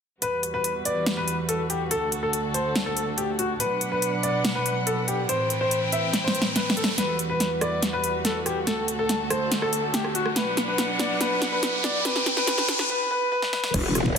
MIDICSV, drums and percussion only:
0, 0, Header, 1, 2, 480
1, 0, Start_track
1, 0, Key_signature, 1, "minor"
1, 0, Tempo, 422535
1, 250, Time_signature, 4, 2, 24, 8
1, 16112, End_track
2, 0, Start_track
2, 0, Title_t, "Drums"
2, 250, Note_on_c, 9, 42, 80
2, 363, Note_off_c, 9, 42, 0
2, 490, Note_on_c, 9, 42, 45
2, 604, Note_off_c, 9, 42, 0
2, 730, Note_on_c, 9, 42, 74
2, 843, Note_off_c, 9, 42, 0
2, 970, Note_on_c, 9, 42, 51
2, 1084, Note_off_c, 9, 42, 0
2, 1209, Note_on_c, 9, 38, 107
2, 1209, Note_on_c, 9, 42, 77
2, 1323, Note_off_c, 9, 38, 0
2, 1323, Note_off_c, 9, 42, 0
2, 1449, Note_on_c, 9, 42, 52
2, 1563, Note_off_c, 9, 42, 0
2, 1690, Note_on_c, 9, 42, 75
2, 1803, Note_off_c, 9, 42, 0
2, 1930, Note_on_c, 9, 42, 48
2, 2043, Note_off_c, 9, 42, 0
2, 2170, Note_on_c, 9, 42, 83
2, 2283, Note_off_c, 9, 42, 0
2, 2410, Note_on_c, 9, 42, 49
2, 2524, Note_off_c, 9, 42, 0
2, 2650, Note_on_c, 9, 42, 76
2, 2763, Note_off_c, 9, 42, 0
2, 2890, Note_on_c, 9, 42, 52
2, 3003, Note_off_c, 9, 42, 0
2, 3130, Note_on_c, 9, 38, 112
2, 3130, Note_on_c, 9, 42, 72
2, 3243, Note_off_c, 9, 38, 0
2, 3243, Note_off_c, 9, 42, 0
2, 3370, Note_on_c, 9, 42, 52
2, 3483, Note_off_c, 9, 42, 0
2, 3609, Note_on_c, 9, 42, 75
2, 3723, Note_off_c, 9, 42, 0
2, 3850, Note_on_c, 9, 42, 52
2, 3963, Note_off_c, 9, 42, 0
2, 4089, Note_on_c, 9, 42, 79
2, 4203, Note_off_c, 9, 42, 0
2, 4330, Note_on_c, 9, 42, 48
2, 4443, Note_off_c, 9, 42, 0
2, 4570, Note_on_c, 9, 42, 72
2, 4683, Note_off_c, 9, 42, 0
2, 4809, Note_on_c, 9, 42, 50
2, 4923, Note_off_c, 9, 42, 0
2, 5050, Note_on_c, 9, 38, 115
2, 5050, Note_on_c, 9, 42, 77
2, 5163, Note_off_c, 9, 38, 0
2, 5163, Note_off_c, 9, 42, 0
2, 5290, Note_on_c, 9, 42, 52
2, 5404, Note_off_c, 9, 42, 0
2, 5530, Note_on_c, 9, 42, 78
2, 5644, Note_off_c, 9, 42, 0
2, 5770, Note_on_c, 9, 42, 49
2, 5883, Note_off_c, 9, 42, 0
2, 6010, Note_on_c, 9, 42, 78
2, 6124, Note_off_c, 9, 42, 0
2, 6250, Note_on_c, 9, 42, 48
2, 6364, Note_off_c, 9, 42, 0
2, 6490, Note_on_c, 9, 42, 69
2, 6603, Note_off_c, 9, 42, 0
2, 6730, Note_on_c, 9, 42, 50
2, 6843, Note_off_c, 9, 42, 0
2, 6970, Note_on_c, 9, 38, 62
2, 6970, Note_on_c, 9, 42, 72
2, 7083, Note_off_c, 9, 38, 0
2, 7083, Note_off_c, 9, 42, 0
2, 7130, Note_on_c, 9, 38, 69
2, 7209, Note_on_c, 9, 42, 48
2, 7243, Note_off_c, 9, 38, 0
2, 7289, Note_on_c, 9, 38, 77
2, 7323, Note_off_c, 9, 42, 0
2, 7402, Note_off_c, 9, 38, 0
2, 7449, Note_on_c, 9, 38, 85
2, 7449, Note_on_c, 9, 42, 75
2, 7563, Note_off_c, 9, 38, 0
2, 7563, Note_off_c, 9, 42, 0
2, 7609, Note_on_c, 9, 38, 87
2, 7689, Note_on_c, 9, 42, 46
2, 7722, Note_off_c, 9, 38, 0
2, 7769, Note_on_c, 9, 38, 97
2, 7803, Note_off_c, 9, 42, 0
2, 7882, Note_off_c, 9, 38, 0
2, 7929, Note_on_c, 9, 38, 50
2, 7929, Note_on_c, 9, 42, 82
2, 8042, Note_off_c, 9, 38, 0
2, 8042, Note_off_c, 9, 42, 0
2, 8169, Note_on_c, 9, 42, 50
2, 8283, Note_off_c, 9, 42, 0
2, 8409, Note_on_c, 9, 38, 49
2, 8409, Note_on_c, 9, 42, 74
2, 8523, Note_off_c, 9, 38, 0
2, 8523, Note_off_c, 9, 42, 0
2, 8649, Note_on_c, 9, 37, 73
2, 8649, Note_on_c, 9, 42, 53
2, 8763, Note_off_c, 9, 37, 0
2, 8763, Note_off_c, 9, 42, 0
2, 8889, Note_on_c, 9, 38, 53
2, 8889, Note_on_c, 9, 42, 78
2, 9003, Note_off_c, 9, 38, 0
2, 9003, Note_off_c, 9, 42, 0
2, 9130, Note_on_c, 9, 42, 53
2, 9243, Note_off_c, 9, 42, 0
2, 9370, Note_on_c, 9, 38, 55
2, 9370, Note_on_c, 9, 42, 81
2, 9483, Note_off_c, 9, 38, 0
2, 9483, Note_off_c, 9, 42, 0
2, 9610, Note_on_c, 9, 37, 47
2, 9610, Note_on_c, 9, 42, 51
2, 9724, Note_off_c, 9, 37, 0
2, 9724, Note_off_c, 9, 42, 0
2, 9850, Note_on_c, 9, 38, 61
2, 9850, Note_on_c, 9, 42, 85
2, 9963, Note_off_c, 9, 38, 0
2, 9963, Note_off_c, 9, 42, 0
2, 10089, Note_on_c, 9, 42, 53
2, 10203, Note_off_c, 9, 42, 0
2, 10330, Note_on_c, 9, 38, 60
2, 10330, Note_on_c, 9, 42, 81
2, 10443, Note_off_c, 9, 38, 0
2, 10443, Note_off_c, 9, 42, 0
2, 10570, Note_on_c, 9, 37, 77
2, 10570, Note_on_c, 9, 42, 56
2, 10684, Note_off_c, 9, 37, 0
2, 10684, Note_off_c, 9, 42, 0
2, 10810, Note_on_c, 9, 38, 64
2, 10810, Note_on_c, 9, 42, 77
2, 10923, Note_off_c, 9, 38, 0
2, 10923, Note_off_c, 9, 42, 0
2, 10931, Note_on_c, 9, 37, 51
2, 11044, Note_off_c, 9, 37, 0
2, 11050, Note_on_c, 9, 42, 56
2, 11164, Note_off_c, 9, 42, 0
2, 11290, Note_on_c, 9, 38, 69
2, 11290, Note_on_c, 9, 42, 82
2, 11403, Note_off_c, 9, 38, 0
2, 11403, Note_off_c, 9, 42, 0
2, 11411, Note_on_c, 9, 37, 48
2, 11524, Note_off_c, 9, 37, 0
2, 11530, Note_on_c, 9, 42, 54
2, 11644, Note_off_c, 9, 42, 0
2, 11651, Note_on_c, 9, 37, 59
2, 11765, Note_off_c, 9, 37, 0
2, 11770, Note_on_c, 9, 38, 75
2, 11770, Note_on_c, 9, 42, 87
2, 11883, Note_off_c, 9, 38, 0
2, 11883, Note_off_c, 9, 42, 0
2, 12010, Note_on_c, 9, 38, 71
2, 12010, Note_on_c, 9, 42, 50
2, 12123, Note_off_c, 9, 38, 0
2, 12123, Note_off_c, 9, 42, 0
2, 12250, Note_on_c, 9, 38, 80
2, 12250, Note_on_c, 9, 42, 76
2, 12363, Note_off_c, 9, 38, 0
2, 12363, Note_off_c, 9, 42, 0
2, 12490, Note_on_c, 9, 38, 78
2, 12490, Note_on_c, 9, 42, 53
2, 12603, Note_off_c, 9, 38, 0
2, 12603, Note_off_c, 9, 42, 0
2, 12730, Note_on_c, 9, 38, 81
2, 12730, Note_on_c, 9, 42, 78
2, 12844, Note_off_c, 9, 38, 0
2, 12844, Note_off_c, 9, 42, 0
2, 12970, Note_on_c, 9, 38, 82
2, 12970, Note_on_c, 9, 42, 56
2, 13083, Note_off_c, 9, 38, 0
2, 13083, Note_off_c, 9, 42, 0
2, 13209, Note_on_c, 9, 38, 88
2, 13209, Note_on_c, 9, 42, 79
2, 13323, Note_off_c, 9, 38, 0
2, 13323, Note_off_c, 9, 42, 0
2, 13450, Note_on_c, 9, 38, 89
2, 13450, Note_on_c, 9, 42, 52
2, 13563, Note_off_c, 9, 38, 0
2, 13563, Note_off_c, 9, 42, 0
2, 13690, Note_on_c, 9, 38, 96
2, 13690, Note_on_c, 9, 42, 84
2, 13804, Note_off_c, 9, 38, 0
2, 13804, Note_off_c, 9, 42, 0
2, 13812, Note_on_c, 9, 38, 85
2, 13925, Note_off_c, 9, 38, 0
2, 13930, Note_on_c, 9, 38, 92
2, 13930, Note_on_c, 9, 42, 47
2, 14044, Note_off_c, 9, 38, 0
2, 14044, Note_off_c, 9, 42, 0
2, 14051, Note_on_c, 9, 38, 80
2, 14165, Note_off_c, 9, 38, 0
2, 14171, Note_on_c, 9, 38, 100
2, 14171, Note_on_c, 9, 42, 76
2, 14284, Note_off_c, 9, 38, 0
2, 14284, Note_off_c, 9, 42, 0
2, 14291, Note_on_c, 9, 38, 84
2, 14405, Note_off_c, 9, 38, 0
2, 14410, Note_on_c, 9, 38, 102
2, 14410, Note_on_c, 9, 42, 55
2, 14524, Note_off_c, 9, 38, 0
2, 14524, Note_off_c, 9, 42, 0
2, 14530, Note_on_c, 9, 38, 92
2, 14644, Note_off_c, 9, 38, 0
2, 15250, Note_on_c, 9, 38, 54
2, 15364, Note_off_c, 9, 38, 0
2, 15370, Note_on_c, 9, 38, 78
2, 15483, Note_off_c, 9, 38, 0
2, 15490, Note_on_c, 9, 38, 82
2, 15604, Note_off_c, 9, 38, 0
2, 15609, Note_on_c, 9, 36, 118
2, 15610, Note_on_c, 9, 42, 85
2, 15610, Note_on_c, 9, 49, 111
2, 15723, Note_off_c, 9, 36, 0
2, 15723, Note_off_c, 9, 42, 0
2, 15723, Note_off_c, 9, 49, 0
2, 15850, Note_on_c, 9, 37, 58
2, 15850, Note_on_c, 9, 42, 53
2, 15963, Note_off_c, 9, 37, 0
2, 15963, Note_off_c, 9, 42, 0
2, 15970, Note_on_c, 9, 36, 67
2, 16084, Note_off_c, 9, 36, 0
2, 16112, End_track
0, 0, End_of_file